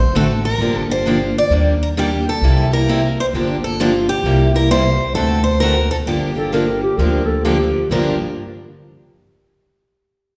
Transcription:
0.00 C5
0.13 A1 D3 A3 C4 F#4 A4
0.45 A#4
0.58 G1 D3 F3 A#3 D4
0.62 G4
0.76 A4
0.90 A#3 D4 G4 C5
1.06 D3 F3 A#3 D4 G4
1.38 D5
1.50 D#2 D#3 G3 A#3 D4 G4
1.83 A#4
1.97 D#3 G3 A#3 D4 G4
2.29 A4
2.41 C2 C3 G3 A#3 E4 G4
2.71 A#3 E4 G4 A#4
2.88 C3 G3 A#3 E4 G4
3.20 C5
3.33 G1 D3 F3 A#3 D4 G4
3.64 A4
3.80 D3 F3 A#3 D4 F4 G4
4.09 G4
4.23 C2 C3 G3 A#3 E4 G4
4.54 A#3 E4 G4 A#4
4.71 C3 G3 A#3 E4 G4 C5
5.14 D2 D3 A3 C4 F#4 A4
5.44 C5
5.60 D3 A3 C4 F#4 A4 A#4
5.91 A4
6.07 G1 D3 F3 A#3 D4 G4
6.35 A#3 D4 G4 A4
6.53 D3 F3 A#3 D4 G4 A#4
6.83 G4
6.97 D2 D3 F3 A#3 D4 G4 A#4
7.26 A4
7.44 D3 F3 A#3 D4 G4
7.90 G1 G2 D3 F3 A#3 D4 G4 A#4

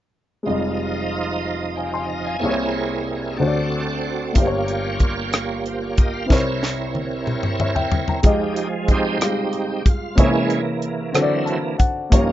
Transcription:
0.43 F1 F2 F3 G#3 D#4 F4 D#5
0.47 G3 D#5
1.76 F5 G5 G#5
1.94 G#5 C6
2.09 A#5
2.25 F5 G#5
2.39 C2 A#3 C4 E4 G#4 A#4 C#5
2.43 C3 G#4 C#5
3.36 D2 D3 C4 F#4 A4 D5
3.41 C#5
3.47 D5
4.33 G1 A#3 F4 C5, kick, closed hi-hat
4.37 G2 A#3 G4 C5
4.44 C#5
4.68 closed hi-hat
5.00 kick, closed hi-hat
5.33 cross-stick, closed hi-hat
5.66 C5, closed hi-hat
5.82 C#5
5.97 D#5, kick, closed hi-hat
6.14 F5
6.26 C2 C3 C4 E4
6.30 C4 E4 A#4 C#5, kick, snare
6.63 snare
6.95 high tom
7.27 mid tom
7.43 mid tom
7.60 C#5 E5, mid tom
7.75 E5 G5, floor tom
7.92 floor tom
8.08 G5 A#5, floor tom
8.23 F3 G#3 D#4 F4 G4 D#5, kick, closed hi-hat
8.56 closed hi-hat
8.88 C4 D#4 G4, kick, closed hi-hat
9.19 G3 F4 G4 F5, cross-stick, closed hi-hat
9.26 G#3
9.53 closed hi-hat
9.86 F4, kick, closed hi-hat
10.15 C3 E3 G#3 A#3 C#4 E4 G#4 C#5, kick, closed hi-hat
10.23 E4
10.50 closed hi-hat
10.82 closed hi-hat
11.12 D3 F#3 C4 F#4 A4 C#5, cross-stick, closed hi-hat
11.16 E4
11.22 D5
11.45 A5, closed hi-hat
11.78 F#5, kick, closed hi-hat
12.10 G2 F3 A#3 C#4 D#4 F4 G4 C#5, kick, closed hi-hat

